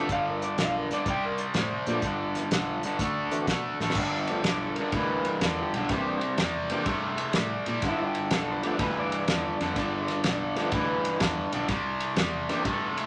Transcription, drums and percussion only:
0.09 kick, closed hi-hat
0.42 closed hi-hat
0.58 snare, closed hi-hat
0.91 snare, closed hi-hat
1.06 kick, closed hi-hat
1.38 closed hi-hat
1.54 snare, closed hi-hat
1.86 closed hi-hat
2.02 kick, snare, closed hi-hat
2.35 snare, closed hi-hat
2.51 snare, closed hi-hat
2.83 closed hi-hat
2.99 kick, closed hi-hat
3.31 closed hi-hat
3.47 kick, snare, closed hi-hat
3.80 snare
3.90 snare
3.95 kick, crash
4.27 ride
4.44 snare, ride
4.76 ride
4.92 kick, ride
5.25 ride
5.41 snare, ride
5.74 ride
5.89 kick, snare, ride
6.21 ride
6.38 snare, ride
6.70 ride
6.86 kick, ride
7.18 ride
7.33 snare, ride
7.66 ride
7.82 kick, snare, ride
8.15 ride
8.31 snare, ride
8.63 ride
8.79 kick, ride
9.12 ride
9.28 snare, ride
9.61 snare, ride
9.76 kick, snare, ride
10.08 snare, ride
10.24 snare, ride
10.56 snare, ride
10.72 kick, ride
11.05 ride
11.20 kick, snare, ride
11.52 ride
11.68 kick, snare, ride
12.00 ride
12.16 snare, ride
12.49 snare, ride
12.65 kick, ride
12.97 ride

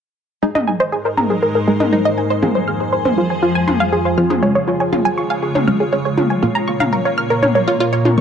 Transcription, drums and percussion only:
0.55 mid tom
1.18 mid tom
1.80 mid tom
2.43 mid tom
3.05 mid tom
3.68 mid tom
4.30 mid tom
4.93 mid tom
5.55 mid tom
6.17 mid tom
6.80 mid tom
7.43 mid tom
8.05 mid tom

